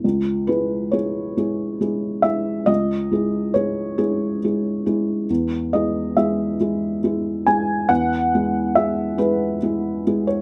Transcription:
\new Staff \with { instrumentName = "Felt piano" } { \time 6/8 \key cis \minor \tempo 4. = 46 << { r8 b'8 cis''4. e''8 | dis''4 cis''8 gis'4. | r8 dis''8 e''4. gis''8 | fis''4 e''8 b'4~ b'16 cis''16 | } \\ { cis,8 <gis e' gis'>8 <gis e' gis'>8 <gis e' gis'>8 <gis e' gis'>8 <gis e' gis'>8 | cis,8 <gis e' gis'>8 <gis e' gis'>8 <gis e'>8 <gis e' gis'>8 <gis e' gis'>8 | e,8 <gis e' gis'>8 <gis e' gis'>8 <gis e' gis'>8 <gis e' gis'>8 <gis e' gis'>8 | e,8 <gis e' gis'>8 <gis e' gis'>8 <gis e' gis'>8 <gis e' gis'>8 <gis e' gis'>8 | } >> }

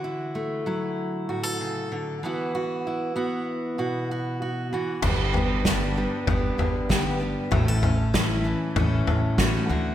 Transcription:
<<
  \new Staff \with { instrumentName = "Steel-string acoustic guitar" } { \time 4/4 \key g \lydian \tempo 4 = 96 << { <e' fis'>8 a8 e'4 fis'16 a'4~ a'16 <b e' fis'>8 | fis'8 e'8 fis'4 fis'8 fis'8 fis'8 fis'8 | <g b d' g'>8 b8 d'4 b4 g'4 | fis'16 a'16 cis'8 e'4 cis'4 fis'8 fis'8 | } \\ { <d e>4 fis4 a,8 cis8 d8 e8~ | e4 b4 b,4. e8 | g,4. g4 d4. | a,4. e4 a,4 d8 | } >> }
  \new Staff \with { instrumentName = "Steel-string acoustic guitar" } { \time 4/4 \key g \lydian r1 | r1 | <g, d g b d' g'>8 <g b d' g'>8 <g, d g b d' g'>8 <g b d' g'>8 <g b d' g'>8 <g b d' g'>8 <g, d g b d' g'>8 <g b d' g'>8 | <a, e a cis' a'>8 <a cis' a'>8 <a, e a cis' a'>8 <a cis' a'>8 <e a cis' a'>8 <a cis' a'>8 <a, e a cis' a'>8 <a d' fis'>8 | }
  \new Staff \with { instrumentName = "Upright bass" } { \clef bass \time 4/4 \key g \lydian r1 | r1 | g,,2 g,,8 g,,4. | a,,2 a,,8 a,,4 d,8 | }
  \new DrumStaff \with { instrumentName = "Drums" } \drummode { \time 4/4 r4 r4 r4 r4 | r4 r4 r4 r4 | <cymc bd tomfh>8 tomfh8 <bd sn>4 <bd tomfh>8 tomfh8 <bd sn>4 | <bd tomfh>8 tomfh8 <bd sn>4 <bd tomfh>8 tomfh8 <bd sn>4 | }
>>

